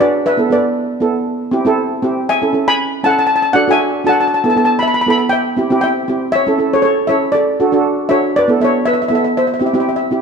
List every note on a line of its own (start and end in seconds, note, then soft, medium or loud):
0.00 0.22 D4 medium
0.00 0.23 F#4 medium
0.00 0.23 G#4 medium
0.00 0.24 B4 medium
0.00 0.26 D5 medium
0.26 0.49 B4 medium
0.26 0.49 E5 medium
0.37 0.45 B3 medium
0.37 0.46 E4 medium
0.37 0.46 A4 medium
0.50 0.81 B3 medium
0.50 0.81 E4 medium
0.50 0.82 A4 medium
0.50 1.23 B4 medium
0.50 1.24 D5 medium
1.00 1.26 B3 medium
1.00 1.26 E4 medium
1.00 1.27 A4 medium
1.51 1.60 C4 medium
1.51 1.60 E4 medium
1.51 1.61 G4 medium
1.65 1.88 C4 medium
1.65 1.88 E4 medium
1.65 1.89 A4 loud
2.02 2.26 C4 medium
2.02 2.26 E4 medium
2.02 2.26 G4 medium
2.29 2.65 E5 medium
2.29 2.67 G#5 medium
2.42 2.49 C#4 medium
2.42 2.49 E4 medium
2.42 2.49 A4 medium
2.53 2.84 C#4 medium
2.53 2.84 E4 medium
2.53 2.85 A4 medium
2.68 3.02 G#5 medium
2.68 3.06 B5 loud
3.04 3.29 C#4 medium
3.04 3.30 E4 medium
3.04 3.30 A4 medium
3.04 3.13 F#5 medium
3.04 3.10 A5 medium
3.11 3.17 A5 medium
3.19 3.25 A5 medium
3.27 3.35 A5 medium
3.36 3.41 A5 medium
3.42 3.50 A5 medium
3.53 3.62 D4 medium
3.53 3.63 F#4 medium
3.53 3.63 A4 medium
3.53 3.68 D5 medium
3.53 3.68 F#5 loud
3.68 3.91 D4 medium
3.68 3.91 F#4 medium
3.68 3.91 A4 medium
3.68 4.08 G#5 loud
3.72 4.05 E5 medium
4.04 4.28 D4 medium
4.04 4.28 F#4 medium
4.04 4.29 A4 medium
4.04 4.11 A5 medium
4.09 4.15 F#5 medium
4.09 4.19 A5 medium
4.21 4.26 A5 medium
4.28 4.33 A5 medium
4.34 4.43 A5 medium
4.44 4.51 B3 medium
4.44 4.52 E4 medium
4.44 4.52 A4 medium
4.44 4.49 A5 medium
4.50 4.56 A5 medium
4.55 4.86 B3 medium
4.55 4.87 E4 medium
4.55 4.87 A4 medium
4.55 4.64 A5 medium
4.65 4.73 A5 medium
4.79 4.90 E5 medium
4.79 4.86 B5 medium
4.88 4.93 B5 medium
4.94 5.00 B5 medium
5.01 5.09 B5 medium
5.06 5.32 B3 medium
5.06 5.32 E4 medium
5.06 5.33 A4 medium
5.10 5.17 B5 medium
5.18 5.25 B5 medium
5.29 5.80 E5 medium
5.29 5.78 G5 medium
5.57 5.65 C4 medium
5.57 5.65 E4 medium
5.57 5.66 G4 medium
5.70 5.93 C4 medium
5.70 5.94 E4 medium
5.70 5.94 G4 loud
5.81 6.19 E5 medium
5.81 6.18 G5 medium
6.08 6.31 C4 medium
6.08 6.31 E4 medium
6.08 6.32 G4 medium
6.32 6.71 C#5 medium
6.32 6.69 E5 medium
6.47 6.54 C#4 medium
6.47 6.54 E4 medium
6.47 6.55 A4 medium
6.58 6.89 C#4 medium
6.58 6.89 E4 medium
6.58 6.90 A4 medium
6.74 6.84 A4 medium
6.74 6.81 C#5 medium
6.82 7.08 A4 medium
6.82 7.08 C#5 medium
7.07 7.34 C#4 medium
7.07 7.35 E4 medium
7.07 7.35 A4 medium
7.07 7.33 C#5 medium
7.07 7.32 E5 medium
7.32 8.07 A4 medium
7.32 8.11 D5 medium
7.60 7.68 D4 medium
7.60 7.68 F#4 medium
7.60 7.68 A4 medium
7.72 7.95 D4 medium
7.72 7.96 F#4 medium
7.72 7.96 A4 medium
8.09 8.33 D4 medium
8.09 8.33 F#4 medium
8.09 8.34 A4 medium
8.09 8.34 C#5 medium
8.09 8.36 E5 medium
8.36 8.49 B4 medium
8.36 8.48 D5 medium
8.48 8.56 B3 medium
8.48 8.56 E4 medium
8.48 8.56 A4 medium
8.60 8.91 B3 medium
8.60 8.91 E4 medium
8.60 8.92 A4 medium
8.60 8.73 E5 medium
8.64 8.75 C#5 medium
8.86 8.95 B4 medium
8.86 8.92 E5 medium
8.94 9.01 E5 medium
9.02 9.07 E5 medium
9.08 9.36 B3 medium
9.08 9.37 E4 medium
9.08 9.37 A4 medium
9.08 9.14 E5 medium
9.15 9.23 E5 medium
9.24 9.32 E5 medium
9.37 9.45 C5 medium
9.37 9.45 E5 medium
9.47 9.53 E5 soft
9.54 9.58 E5 medium
9.60 9.70 C4 medium
9.60 9.70 E4 medium
9.60 9.70 G4 medium
9.60 9.65 E5 soft
9.66 9.73 E5 soft
9.74 9.97 C4 medium
9.74 9.98 E4 medium
9.74 9.98 G4 medium
9.74 9.79 E5 soft
9.80 9.88 E5 medium
9.89 9.95 E5 soft
9.96 10.04 E5 medium
10.11 10.22 C4 medium
10.11 10.22 E4 medium
10.11 10.22 G4 medium